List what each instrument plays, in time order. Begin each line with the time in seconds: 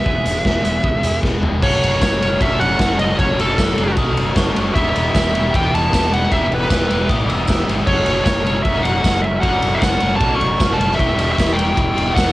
Already playing: overdriven electric guitar G#3 B3 G#4, lead electric guitar E5
0.04 fingered electric bass E1, overdriven electric guitar E2 E3 G#3 B3 E4 G#4, kick
0.24 fingered electric bass E1, overdriven electric guitar B2, closed hi-hat
0.45 fingered electric bass E1, overdriven electric guitar G#3, kick, snare
0.64 fingered electric bass E1, overdriven electric guitar B3, closed hi-hat
0.84 fingered electric bass C#2, overdriven electric guitar G#3, kick
1.03 fingered electric bass E2, overdriven electric guitar G#4, closed hi-hat
1.23 fingered electric bass E1, overdriven electric guitar B3, kick, snare
1.42 overdriven electric guitar G#3, floor tom
1.61 fingered electric bass F#1, overdriven electric guitar F#2 C#3 F#3 A3 C#4 F#4, tonewheel organ C#5 F#5 A5, lead electric guitar C#5, glockenspiel C#6, kick, crash
1.83 fingered electric bass F#1, ride
2.00 fingered electric bass F#1, overdriven electric guitar F#2 C#3 F#3 A3 C#4 F#4, lead electric guitar C#5, kick, snare, ride, tambourine
2.20 overdriven electric guitar F#2 C#3 F#3 A3 C#4 F#4, ride
2.39 fingered electric bass F#1, overdriven electric guitar F#2 C#3 F#3 A3 C#4 F#4, lead electric guitar E5, kick, ride
2.60 fingered electric bass F#1, lead electric guitar F#5, ride
2.79 fingered electric bass F#1, overdriven electric guitar F#2 C#3 F#3 A3 C#4 F#4, kick, snare, ride, tambourine
2.98 overdriven electric guitar F#2 C#3 F#3 A3 C#4 F#4, lead electric guitar D#5, ride
3.18 fingered electric bass F#1, overdriven electric guitar F#2 C#3 F#3 A3 C#4 F#4, lead electric guitar C#5, kick, ride
3.38 fingered electric bass F#1, lead electric guitar A4, ride
3.57 fingered electric bass F#1, overdriven electric guitar F#2 C#3 F#3 A3 C#4 F#4, kick, snare, ride, tambourine
3.75 fingered electric bass F#1, overdriven electric guitar F#2 C#3 F#3 A3 C#4 F#4, ride
3.96 fingered electric bass B1, overdriven electric guitar F#2 C#3 F#3 A3 C#4 F#4, glockenspiel D#6, kick, ride
4.16 fingered electric bass F#1, ride
4.35 fingered electric bass F#1, overdriven electric guitar F#2 C#3 F#3 A3 C#4 F#4, glockenspiel C#6, kick, snare, ride, tambourine
4.55 fingered electric bass F#1, overdriven electric guitar F#2 C#3 F#3 A3 C#4 F#4, ride
4.73 fingered electric bass E1, overdriven electric guitar E2 B2 E3 G3 B3 E4 G4, lead electric guitar E5, tonewheel organ E5 G5, glockenspiel B5, kick, ride
4.96 fingered electric bass E1, ride
5.14 fingered electric bass E1, overdriven electric guitar E2 B2 E3 G3 B3 E4 G4, lead electric guitar E5, kick, snare, ride, tambourine
5.33 overdriven electric guitar E2 B2 E3 G3 B3 E4 G4, ride
5.53 fingered electric bass E1, overdriven electric guitar E2 B2 E3 G3 B3 E4 G4, lead electric guitar G5, kick, ride
5.73 fingered electric bass E1, lead electric guitar A5, ride
5.92 fingered electric bass E1, overdriven electric guitar E2 B2 E3 G3 B3 E4 G4, kick, snare, ride, tambourine
6.12 overdriven electric guitar E2 B2 E3 G3 B3 E4 G4, lead electric guitar F#5, ride
6.31 fingered electric bass E1, overdriven electric guitar E2 B2 E3 G3 B3 E4 G4, lead electric guitar E5, kick, ride
6.51 fingered electric bass E1, ride
6.55 lead electric guitar B4
6.70 fingered electric bass E1, overdriven electric guitar E2 B2 E3 G3 B3 E4 G4, kick, snare, ride, tambourine
6.89 fingered electric bass E1, overdriven electric guitar E2 B2 E3 G3 B3 E4 G4, ride
7.08 fingered electric bass A1, overdriven electric guitar E2 B2 E3 G3 B3 E4 G4, glockenspiel D#6, kick, ride
7.29 fingered electric bass E1, glockenspiel E6, ride
7.48 fingered electric bass E1, overdriven electric guitar E2 B2 E3 G3 B3 E4 G4, kick, snare, ride, tambourine
7.67 fingered electric bass G1, overdriven electric guitar E2 B2 E3 G3 B3 E4 G4, ride
7.85 fingered electric bass F#1, overdriven electric guitar F#2 C#3 F#3 A3 C#4 F#4, tonewheel organ C#5 A5, lead electric guitar C#5, glockenspiel C#6, kick, crash
8.06 fingered electric bass F#1, ride
8.24 fingered electric bass F#1, overdriven electric guitar F#2 C#3 F#3 A3 C#4, lead electric guitar C#5, kick, snare, ride, tambourine
8.28 overdriven electric guitar F#4
8.46 overdriven electric guitar F#2 C#3 F#3 A3 C#4 F#4, ride
8.63 fingered electric bass F#1, overdriven electric guitar F#2 C#3 F#3 A3 C#4, lead electric guitar E5, kick, ride
8.68 overdriven electric guitar F#4
8.83 fingered electric bass F#1, lead electric guitar F#5, ride
9.03 fingered electric bass F#1, overdriven electric guitar F#2 C#3 F#3 A3 C#4 F#4, kick, snare, ride, tambourine
9.22 overdriven electric guitar F#2 C#3 F#3 A3 C#4, lead electric guitar E5, ride
9.26 overdriven electric guitar F#4
9.40 fingered electric bass F#1, overdriven electric guitar F#2 C#3 F#3, lead electric guitar F#5, kick, ride
9.45 overdriven electric guitar A3 C#4 F#4
9.62 fingered electric bass F#1, ride
9.74 lead electric guitar E5 F#5
9.81 fingered electric bass F#1, overdriven electric guitar F#2 C#3 F#3 A3 C#4 F#4, kick, snare, ride, tambourine
10.00 fingered electric bass F#1, overdriven electric guitar F#2 C#3 F#3 A3 C#4 F#4, ride
10.16 overdriven electric guitar F#2, lead electric guitar A5
10.20 fingered electric bass B1, overdriven electric guitar C#3 F#3 A3 C#4 F#4, kick, ride
10.35 lead electric guitar C#6
10.40 fingered electric bass F#1, ride
10.59 fingered electric bass F#1, overdriven electric guitar F#2 C#3 F#3 A3 C#4 F#4, kick, snare, ride, tambourine
10.74 lead electric guitar A5
10.79 fingered electric bass F#1, overdriven electric guitar F#2 C#3 F#3 A3 C#4 F#4, ride
10.92 lead electric guitar E5, snare
10.97 fingered electric bass E1, overdriven electric guitar E2 B2 E3 G3 B3 E4 G4, tonewheel organ E4 G4 G5, glockenspiel C#6, kick, ride
11.17 fingered electric bass E1, ride
11.32 lead electric guitar E5
11.38 fingered electric bass E1, overdriven electric guitar E2 B2 E3 G3 B3 E4 G4, kick, snare, ride, tambourine
11.53 overdriven electric guitar E2, lead electric guitar G5
11.57 overdriven electric guitar B2 E3 G3 B3 E4 G4, ride
11.75 fingered electric bass E1, overdriven electric guitar E2 B2 E3 G3 B3 E4 G4, kick, ride
11.96 fingered electric bass E1, ride
12.14 fingered electric bass E1, overdriven electric guitar E2 B2 E3 G3 B3 E4 G4, lead electric guitar F#5, kick, snare, ride, tambourine